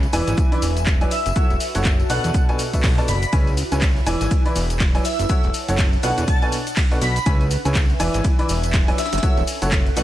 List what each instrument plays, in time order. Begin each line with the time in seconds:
Already playing: analog synth pad C#4 B4 E5 G#5
0.03 closed hi-hat, tambourine
0.13 analog synth bass E1, upright piano E3 E4 B4 D5 G#5, analog synth pad D4, open hi-hat, cabasa, shaker
0.27 analog synth bass G#1, snare, closed hi-hat, tambourine, cabasa
0.38 kick, closed hi-hat, tambourine, cabasa, shaker
0.52 upright piano E3 E4 B4 D5 B5, closed hi-hat, tambourine
0.62 analog synth bass E1, open hi-hat, cabasa, shaker
0.77 closed hi-hat, tambourine, cabasa
0.86 kick, snare, clap, closed hi-hat, tambourine, cabasa, shaker
1.01 upright piano F#3 E4 B4 D5 G#5, closed hi-hat, tambourine
1.11 analog synth pad F#4, digital synth lead E5, open hi-hat, cabasa, shaker
1.21 analog synth pad C#5
1.26 analog synth bass F#1, closed hi-hat, tambourine, cabasa
1.36 upright piano F#3 E4 A4 C#5 F#5, kick, closed hi-hat, tambourine, cabasa, shaker
1.50 analog synth bass E1, closed hi-hat, tambourine
1.57 analog synth pad A5, open hi-hat, cabasa, shaker
1.75 analog synth bass F#1, upright piano F#3 E4 A4 C#5 F#5, closed hi-hat, tambourine, cabasa
1.85 kick, snare, clap, closed hi-hat, tambourine, cabasa, shaker
2.00 closed hi-hat, tambourine
2.10 analog synth bass B1, upright piano B2 D4 A4 B4 F#5, digital synth lead F#5, open hi-hat, cabasa, shaker
2.24 analog synth bass E2, closed hi-hat, tambourine, cabasa
2.28 analog synth pad B4
2.34 kick, closed hi-hat, tambourine, cabasa, shaker
2.49 upright piano B2 D4 A4 B4 G#5, closed hi-hat, tambourine
2.59 open hi-hat, cabasa, shaker
2.66 analog synth pad D5
2.73 upright piano B2 D4 A4 B4 E5, kick, closed hi-hat, tambourine, cabasa
2.83 analog synth bass B1, kick, snare, clap, closed hi-hat, open hi-hat, tambourine, cabasa
2.98 upright piano B2 D4 A4 B4 A5, snare, closed hi-hat, tambourine
3.08 analog synth bass F#1, digital synth lead B5, open hi-hat, cabasa, shaker
3.22 digital synth lead B5, closed hi-hat, tambourine, cabasa
3.32 analog synth bass C#2, upright piano C#3 E4 B4 C#5 G#5, analog synth pad E4, kick, closed hi-hat, ride, tambourine, cabasa, shaker
3.47 closed hi-hat, tambourine
3.57 open hi-hat, cabasa, shaker
3.67 analog synth pad C#5 G#5
3.72 analog synth bass C#2, upright piano C#3 E4 B4 C#5 G#5, closed hi-hat, tambourine, cabasa
3.82 kick, snare, clap, closed hi-hat, ride, tambourine, cabasa, shaker
3.96 closed hi-hat, tambourine
4.06 analog synth bass E1, upright piano E3 E4 B4 D5 G#5, open hi-hat, cabasa, shaker
4.21 analog synth bass G#1, snare, closed hi-hat, tambourine, cabasa
4.31 kick, closed hi-hat, ride, cabasa, shaker
4.45 upright piano E3 E4 B4 D5 B5, closed hi-hat, tambourine
4.49 analog synth pad D5
4.56 analog synth bass E1, open hi-hat, cabasa, shaker
4.70 closed hi-hat, tambourine, cabasa
4.80 kick, snare, clap, closed hi-hat, ride, tambourine, cabasa, shaker
4.95 upright piano F#3 E4 B4 D5 G#5, closed hi-hat, tambourine
5.05 digital synth lead E5, open hi-hat, cabasa, shaker
5.19 analog synth bass F#1, analog synth pad A5, closed hi-hat, tambourine, cabasa
5.29 upright piano F#3 E4 A4 C#5 F#5, kick, closed hi-hat, ride, tambourine, cabasa, shaker
5.41 analog synth bass E1, analog synth pad C#5, closed hi-hat, tambourine
5.50 analog synth pad F#5, shaker
5.54 open hi-hat, cabasa
5.68 analog synth bass F#1, upright piano F#3 E4 A4 C#5 F#5, closed hi-hat, tambourine, cabasa
5.78 kick, snare, clap, closed hi-hat, ride, tambourine, cabasa, shaker
5.93 closed hi-hat, tambourine
6.03 analog synth bass B1, upright piano B2 D4 A4 B4 F#5, analog synth pad D4, digital synth lead F#5, open hi-hat, cabasa, shaker
6.18 analog synth bass E2, closed hi-hat, tambourine, cabasa
6.28 digital synth lead A5, kick, closed hi-hat, ride, tambourine, cabasa, shaker
6.40 upright piano B2 D4 A4 B4 G#5, analog synth pad B4, closed hi-hat, tambourine
6.52 open hi-hat, cabasa, shaker
6.67 closed hi-hat, tambourine, cabasa
6.76 kick, snare, clap, closed hi-hat, open hi-hat, ride, tambourine, cabasa
6.91 upright piano B2 D4 A4 B4 F#5, snare, closed hi-hat, tambourine
7.02 analog synth bass B1, digital synth lead B5, open hi-hat, cabasa, shaker
7.16 digital synth lead B5, closed hi-hat, tambourine, cabasa
7.26 analog synth bass C#2, upright piano C#3 E4 B4 C#5 G#5, analog synth pad C#4, kick, closed hi-hat, ride, tambourine, cabasa, shaker
7.41 closed hi-hat, tambourine
7.51 analog synth pad E5, open hi-hat, cabasa, shaker
7.61 analog synth pad G#5
7.65 analog synth bass C#2, upright piano C#3 E4 B4 C#5 G#5, closed hi-hat, tambourine, cabasa
7.75 kick, snare, clap, closed hi-hat, ride, tambourine, cabasa, shaker
7.90 closed hi-hat, tambourine
8.00 analog synth bass E1, upright piano E3 E4 B4 D5 G#5, analog synth pad D4, open hi-hat, cabasa, shaker
8.14 analog synth bass G#1, snare, closed hi-hat, tambourine, cabasa
8.24 kick, closed hi-hat, ride, tambourine, cabasa, shaker
8.39 upright piano E3 E4 B4 D5 B5, closed hi-hat, tambourine
8.49 analog synth bass E1, open hi-hat, cabasa, shaker
8.63 closed hi-hat, tambourine, cabasa
8.73 kick, snare, clap, closed hi-hat, ride, cabasa, shaker
8.88 upright piano F#3 E4 B4 D5 G#5, closed hi-hat, tambourine
8.98 analog synth pad C#4, digital synth lead E5, snare, open hi-hat, cabasa, shaker
9.05 analog synth pad A4, snare, shaker
9.12 analog synth bass F#1, snare, closed hi-hat, tambourine, cabasa, shaker
9.18 snare, shaker
9.23 upright piano F#3 E4 A4 C#5 F#5, kick, closed hi-hat, ride, tambourine, cabasa, shaker
9.37 analog synth bass E1, closed hi-hat, tambourine
9.43 analog synth pad F#5
9.47 open hi-hat, cabasa, shaker
9.62 analog synth bass F#1, upright piano F#3 E4 A4 C#5 F#5, closed hi-hat, tambourine, cabasa
9.72 kick, snare, clap, closed hi-hat, ride, cabasa, shaker
9.86 closed hi-hat, tambourine
9.96 analog synth bass B1, upright piano B2 D4 A4 B4 F#5, analog synth pad B3, digital synth lead F#5, clap, open hi-hat, cabasa, shaker